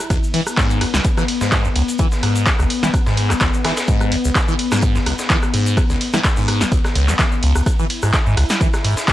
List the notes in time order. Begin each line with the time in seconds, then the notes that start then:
Already playing: E4
0.10 C#2 B3, kick, cross-stick, closed hi-hat, ride, shaker
0.23 shaker
0.34 E3, closed hi-hat, open hi-hat, ride
0.47 cross-stick, shaker
0.57 G#2, kick, snare, clap, closed hi-hat, ride, shaker
0.70 shaker
0.81 C#2, cross-stick, closed hi-hat, open hi-hat, ride
0.94 C#2, snare, shaker
1.04 kick, closed hi-hat, ride, shaker
1.17 E3, cross-stick, snare, shaker
1.28 closed hi-hat, open hi-hat, ride
1.41 G#2, snare, shaker
1.52 kick, cross-stick, snare, clap, closed hi-hat, ride, shaker
1.65 C#2, shaker
1.76 C#2, closed hi-hat, open hi-hat, ride
1.88 closed hi-hat, shaker
1.99 E3, kick, closed hi-hat, ride, shaker
2.12 snare, shaker
2.23 G#2, cross-stick, closed hi-hat, open hi-hat, ride
2.36 closed hi-hat, shaker
2.46 C#2, kick, snare, clap, closed hi-hat, ride, shaker
2.59 C#2, cross-stick, shaker
2.70 closed hi-hat, open hi-hat, ride
2.83 E3, snare, shaker
2.94 kick, cross-stick, closed hi-hat, ride, shaker
3.06 G#2, snare, shaker
3.17 closed hi-hat, open hi-hat, ride
3.30 C#2, cross-stick, snare, clap, closed hi-hat, shaker
3.40 C#2, kick, snare, clap, closed hi-hat, ride, shaker
3.54 shaker
3.65 E3, cross-stick, snare, closed hi-hat, open hi-hat, ride
3.77 snare, closed hi-hat, shaker
3.88 G#2, kick, closed hi-hat, ride, shaker
4.01 cross-stick, shaker
4.12 C#2, closed hi-hat, open hi-hat, ride
4.25 C#2, shaker
4.35 kick, cross-stick, snare, clap, closed hi-hat, ride, shaker
4.48 E3, shaker
4.59 closed hi-hat, open hi-hat, ride
4.72 G#2, cross-stick, snare, shaker
4.82 kick, closed hi-hat, ride, shaker
4.95 C#2, snare, shaker
5.06 C#2, cross-stick, closed hi-hat, open hi-hat, ride
5.19 snare, shaker
5.30 E3, kick, snare, clap, closed hi-hat, ride, shaker
5.43 cross-stick, shaker
5.54 G#2, closed hi-hat, open hi-hat, ride
5.66 closed hi-hat, shaker
5.77 C#2, kick, cross-stick, closed hi-hat, ride, shaker
5.90 C#2, snare, shaker
6.01 closed hi-hat, open hi-hat, ride
6.13 E3, cross-stick, snare, closed hi-hat, shaker
6.24 kick, snare, clap, closed hi-hat, ride, shaker
6.37 G#2, shaker
6.48 cross-stick, closed hi-hat, open hi-hat, ride
6.61 C#2, snare, shaker
6.72 C#2, kick, closed hi-hat, ride, shaker
6.84 cross-stick, snare, shaker
6.95 C#2, closed hi-hat, open hi-hat, ride
7.08 F#2, snare, clap, closed hi-hat, shaker
7.19 E3, kick, cross-stick, snare, clap, closed hi-hat, ride, shaker
7.32 shaker
7.43 C#2, closed hi-hat, open hi-hat, ride
7.55 C#2, cross-stick, shaker
7.66 E4, kick, cross-stick, closed hi-hat, ride, shaker
7.79 E3, shaker
7.90 closed hi-hat, open hi-hat, ride
8.02 G#2, cross-stick, shaker
8.13 kick, snare, clap, closed hi-hat, ride, shaker
8.26 G#2, shaker
8.37 C#2, cross-stick, closed hi-hat, open hi-hat, ride
8.49 snare, shaker
8.61 E3, kick, closed hi-hat, ride, shaker
8.73 cross-stick, snare, shaker
8.84 G#2, closed hi-hat, open hi-hat, ride
8.97 snare, shaker
9.08 G#2, kick, cross-stick, snare, clap, closed hi-hat, ride, shaker